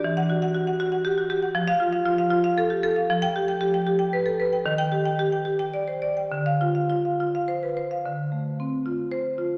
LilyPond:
\new Staff \with { instrumentName = "Marimba" } { \time 6/8 \key d \dorian \tempo 4. = 76 << { r16 fis''8 r2 r16 | r16 f''8 r2 r16 | r16 g''8 r2 r16 | r16 g''8 r2 r16 |
r16 f''8 r2 r16 | r2 c''8. r16 | } \\ { e8 fis'16 fis''16 fis'16 fis''16 fis'16 fis''16 g'16 fis'16 g'16 fis''16 | f8 f'16 f''16 f'16 f''16 f'16 f''16 a'16 g'16 a'16 f''16 | f8 g'16 g''16 g'16 g''16 g'16 g''16 b'16 a'16 b'16 g''16 | ees8 g'16 g''16 g'16 g''16 g'16 g''16 d''16 c''16 d''16 g''16 |
d8 f'16 f''16 f'16 f''16 f'16 f''16 c''16 b'16 c''16 f''16 | d8 a8 c'8 f'8. r16 f'8 | } >> }